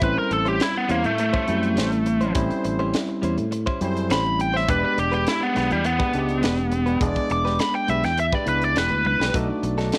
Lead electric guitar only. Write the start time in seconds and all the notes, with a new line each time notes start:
0.03 B4
0.19 A#4
0.33 A4
0.48 G4
0.62 E4
0.77 B3
0.91 A#3
1.06 A3
1.20 A3
4.12 B5
4.41 G5
4.56 E5
4.70 B4
4.85 B4
4.99 G4
5.14 G4
5.28 E4
5.43 B3
5.57 B3
5.72 G3
5.86 B3
7.32 D6
7.61 B5
7.75 G5
7.89 E5
8.05 G5
8.20 E5
8.35 D5
8.48 B4
8.64 D5
8.78 B4
9.07 B4